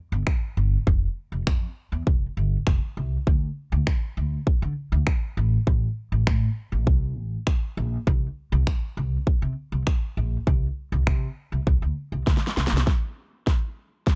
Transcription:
0.12 0.21 G1 medium
0.27 finger snap loud
0.27 kick loud
0.57 0.75 G1 medium
0.87 1.05 F1 loud
0.87 kick loud
1.32 1.41 F1 medium
1.47 1.65 F2 loud
1.47 finger snap loud
1.47 kick loud
1.92 2.01 E2 medium
2.07 2.25 F1 medium
2.07 kick loud
2.37 2.55 G1 medium
2.67 2.76 F1 loud
2.67 finger snap loud
2.67 kick loud
2.97 3.15 C2 medium
3.27 3.45 D2 medium
3.27 kick loud
3.72 3.81 D2 loud
3.87 finger snap loud
3.87 kick loud
4.17 4.35 D2 medium
4.47 muted upright bass stroke soft
4.47 kick loud
4.62 4.71 D3 medium
4.92 5.01 D2 medium
5.07 finger snap loud
5.07 kick loud
5.37 5.55 A1 medium
5.67 5.85 A1 loud
5.67 kick loud
6.12 6.21 A1 medium
6.27 6.45 A2 loud
6.27 finger snap loud
6.27 kick loud
6.72 6.87 A1 medium
6.87 7.17 C2 medium
6.87 kick loud
7.17 7.35 A1 medium
7.47 finger snap loud
7.47 kick loud
7.77 7.96 A#1 loud
8.07 8.25 C2 loud
8.07 kick loud
8.52 8.61 C2 loud
8.67 finger snap loud
8.67 kick loud
8.97 9.15 C2 medium
9.27 muted upright bass stroke soft
9.27 kick loud
9.42 9.51 C3 medium
9.72 9.81 C2 medium
9.87 finger snap loud
9.87 kick loud
10.17 10.36 A#1 medium
10.47 10.65 C2 loud
10.47 kick loud
10.92 11.01 C2 medium
11.07 11.25 C3 loud
11.07 finger snap loud
11.07 kick loud
11.52 11.61 C2 medium
11.67 11.76 C2 medium
11.67 kick loud
11.82 11.91 D2 medium
12.12 12.21 C2 medium
12.27 12.36 D2 medium
12.27 kick loud
12.27 snare medium
12.37 snare medium
12.47 snare medium
12.57 12.66 C2 medium
12.57 snare medium
12.67 snare medium
12.72 12.81 C2 medium
12.77 snare medium
12.87 kick loud
12.87 snare medium
13.47 kick loud
13.47 snare medium
14.07 kick loud
14.07 snare medium

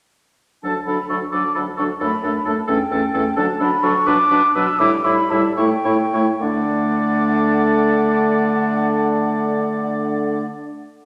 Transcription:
0.63 0.74 D2 soft
0.63 0.74 F#3 soft
0.63 0.74 D4 soft
0.63 0.74 A4 soft
0.63 0.85 A5 medium
0.86 0.97 D2 soft
0.86 0.97 F#3 soft
0.86 0.98 D4 soft
0.86 0.98 A4 soft
0.86 1.09 B5 soft
1.09 1.20 D2 soft
1.09 1.21 F#3 soft
1.09 1.21 D4 soft
1.09 1.20 A4 soft
1.09 1.16 C#6 medium
1.32 1.43 D2 soft
1.32 1.43 F#3 soft
1.32 1.43 D4 soft
1.32 1.43 A4 soft
1.32 1.54 D6 medium
1.55 1.66 D2 soft
1.55 1.66 F#3 soft
1.55 1.67 D4 soft
1.55 1.65 A4 soft
1.55 1.61 B5 medium
1.77 1.88 D2 soft
1.77 1.89 F#3 soft
1.77 1.89 D4 soft
1.77 1.87 A4 soft
1.77 1.84 C#6 medium
2.00 2.11 F#2 medium
2.00 2.12 A3 soft
2.00 2.11 D4 soft
2.00 2.10 A4 soft
2.00 2.44 B5 medium
2.23 2.33 F#2 soft
2.23 2.34 A3 soft
2.23 2.34 D4 soft
2.23 2.33 A4 soft
2.45 2.55 F#2 soft
2.45 2.56 A3 soft
2.45 2.56 D4 soft
2.45 2.55 A4 soft
2.45 2.51 A5 medium
2.67 2.78 E2 medium
2.67 2.78 A3 soft
2.67 2.79 C#4 soft
2.67 2.78 A4 soft
2.67 3.38 G5 medium
2.91 3.01 E2 medium
2.91 3.02 A3 soft
2.91 3.01 C#4 medium
2.91 3.01 A4 medium
3.14 3.24 E2 medium
3.14 3.25 A3 medium
3.14 3.25 C#4 medium
3.14 3.24 A4 medium
3.36 3.47 D2 medium
3.36 3.48 F#3 medium
3.36 3.47 D4 medium
3.36 3.47 A4 medium
3.36 3.59 A5 medium
3.60 3.70 D2 medium
3.60 3.71 F#3 medium
3.60 3.71 D4 medium
3.60 3.70 A4 medium
3.60 3.85 B5 medium
3.83 3.94 D2 medium
3.83 3.94 F#3 medium
3.83 3.94 D4 medium
3.83 3.93 A4 medium
3.83 4.08 C#6 medium
4.06 4.17 B2 medium
4.06 4.18 F#3 medium
4.06 4.18 D4 medium
4.06 4.17 B4 medium
4.06 4.57 D6 loud
4.30 4.42 B2 medium
4.30 4.41 F#3 medium
4.30 4.42 D4 medium
4.30 4.42 B4 medium
4.55 4.66 B2 medium
4.55 4.67 F#3 medium
4.55 4.67 D4 medium
4.55 4.66 B4 medium
4.55 4.80 E6 loud
4.79 4.91 A2 medium
4.79 4.92 G3 medium
4.79 4.92 E4 medium
4.79 4.91 E5 medium
4.79 5.06 D6 loud
5.04 5.16 A2 medium
5.04 5.17 G3 medium
5.04 5.17 E4 medium
5.04 5.16 E5 medium
5.04 5.32 B5 loud
5.30 5.42 A2 medium
5.30 5.43 G3 medium
5.30 5.44 E4 medium
5.30 5.43 E5 medium
5.30 5.56 A5 medium
5.57 5.70 A2 medium
5.57 5.70 A3 medium
5.57 5.70 E4 medium
5.57 5.69 C#5 medium
5.57 6.40 G5 medium
5.84 5.97 A2 medium
5.84 5.98 A3 medium
5.84 5.98 E4 medium
5.84 5.97 C#5 medium
6.13 6.26 A2 medium
6.13 6.26 A3 medium
6.13 6.26 E4 medium
6.13 6.26 C#5 medium
6.41 10.46 D3 medium
6.41 10.46 A3 medium
6.41 10.47 D4 medium
6.41 10.46 D5 medium
6.41 10.45 F#5 medium

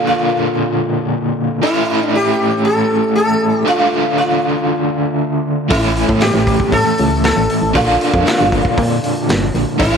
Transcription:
0.00 1.61 A#2 loud
0.00 1.62 D3 loud
0.00 1.62 A#3 medium
0.00 1.62 D4 medium
0.00 1.63 F4 loud
0.07 1.07 F4 medium
1.62 3.65 A2 medium
1.62 3.65 E3 medium
1.62 3.65 A3 loud
1.62 3.66 C#4 loud
1.62 2.05 E4 medium
1.62 3.67 E4 medium
2.05 2.16 D4 medium
2.15 2.64 G4 loud
2.65 3.14 A4 medium
3.15 3.57 A4 loud
3.57 3.68 G4 loud
3.65 5.69 D3 medium
3.65 5.69 A3 medium
3.65 5.69 D4 medium
3.65 4.17 F4 medium
3.65 5.70 F4 medium
4.18 5.16 F4 medium
5.68 6.04 A1 loud
5.68 7.72 A2 medium
5.68 7.73 E3 medium
5.68 7.73 A3 loud
5.68 7.73 C#4 medium
5.68 7.74 E4 medium
5.68 6.24 E4 loud
5.68 kick loud
5.68 open hi-hat medium
5.97 open hi-hat medium
6.08 6.31 A2 medium
6.08 kick medium
6.21 6.73 G4 medium
6.21 snare loud
6.21 open hi-hat medium
6.34 6.56 A1 loud
6.34 snare soft
6.47 kick medium
6.47 open hi-hat medium
6.60 kick medium
6.72 6.84 A2 medium
6.72 7.23 A4 loud
6.72 kick loud
6.72 open hi-hat medium
6.98 7.33 C#2 medium
6.98 open hi-hat medium
7.24 7.76 A4 loud
7.24 snare loud
7.24 open hi-hat medium
7.37 7.48 A1 medium
7.50 open hi-hat medium
7.62 7.73 A1 medium
7.74 7.97 A#1 loud
7.74 9.77 A#2 medium
7.74 9.77 D3 medium
7.74 9.77 A#3 medium
7.74 9.77 D4 medium
7.74 8.25 F4 loud
7.74 9.78 F4 medium
7.74 kick loud
7.74 open hi-hat medium
8.01 open hi-hat medium
8.14 8.25 F2 medium
8.14 kick medium
8.26 9.24 F4 medium
8.26 snare loud
8.26 open hi-hat medium
8.41 8.62 G1 medium
8.52 kick medium
8.52 open hi-hat medium
8.65 kick medium
8.78 9.00 A#2 medium
8.78 kick loud
8.78 open hi-hat medium
9.04 open hi-hat medium
9.29 9.51 G1 medium
9.29 snare loud
9.29 open hi-hat medium
9.54 9.65 A#1 medium
9.54 open hi-hat soft
9.78 9.97 A1 loud
9.78 9.97 A2 medium
9.78 9.97 E3 medium
9.78 9.97 A3 medium
9.78 9.97 C#4 medium
9.78 9.97 E4 loud
9.78 9.97 E4 medium
9.78 kick loud
9.78 open hi-hat medium

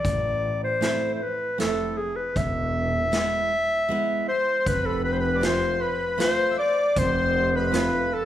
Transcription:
0.00 0.59 D5 medium
0.05 0.97 A1 loud
0.05 kick medium
0.05 closed hi-hat soft
0.64 1.10 C5 medium
0.81 1.19 A3 soft
0.81 1.20 C4 soft
0.81 1.20 E4 medium
0.81 snare medium
0.81 closed hi-hat soft
1.14 1.24 C5 medium
1.22 1.59 B4 medium
1.58 2.05 F1 medium
1.58 1.97 A3 medium
1.58 1.97 C4 medium
1.58 1.97 E4 medium
1.58 1.99 A4 medium
1.58 snare soft
1.58 closed hi-hat soft
1.97 2.17 G#4 medium
2.16 2.38 B4 medium
2.36 3.28 E1 loud
2.36 4.27 E5 loud
2.36 kick medium
2.36 closed hi-hat soft
3.12 3.50 G#3 medium
3.12 3.50 B3 soft
3.12 3.51 E4 medium
3.12 snare medium
3.12 closed hi-hat soft
3.89 4.27 G#3 medium
3.89 4.28 B3 medium
3.89 4.29 E4 medium
4.28 4.69 C5 medium
4.28 4.58 C5 medium
4.59 4.66 C5 medium
4.66 6.05 F1 loud
4.66 4.87 B4 medium
4.66 5.03 B4 medium
4.66 kick medium
4.66 closed hi-hat soft
4.86 5.04 A4 medium
5.04 5.18 B4 medium
5.04 5.14 B4 medium
5.12 5.22 C5 medium
5.19 5.37 B4 medium
5.19 5.46 B4 medium
5.35 5.42 D5 medium
5.41 5.80 A3 medium
5.41 5.81 C4 medium
5.41 5.81 F4 medium
5.41 5.82 C5 medium
5.41 snare medium
5.41 closed hi-hat soft
5.45 5.82 C5 medium
5.80 6.20 B4 medium
5.80 6.19 B4 medium
6.18 6.57 A3 medium
6.18 6.57 C4 medium
6.18 6.58 F4 medium
6.18 6.51 C5 medium
6.18 6.55 C5 loud
6.18 snare medium
6.18 closed hi-hat soft
6.51 6.58 E5 medium
6.58 6.97 D5 medium
6.58 7.00 D5 loud
6.96 8.25 F1 loud
6.96 7.50 C5 medium
6.96 7.57 C5 loud
6.96 kick medium
6.96 closed hi-hat soft
7.55 8.15 B4 medium
7.55 8.14 B4 medium
7.72 8.11 A3 medium
7.72 8.11 C4 medium
7.72 8.12 F4 medium
7.72 snare medium
7.72 closed hi-hat soft
8.12 8.25 A4 medium

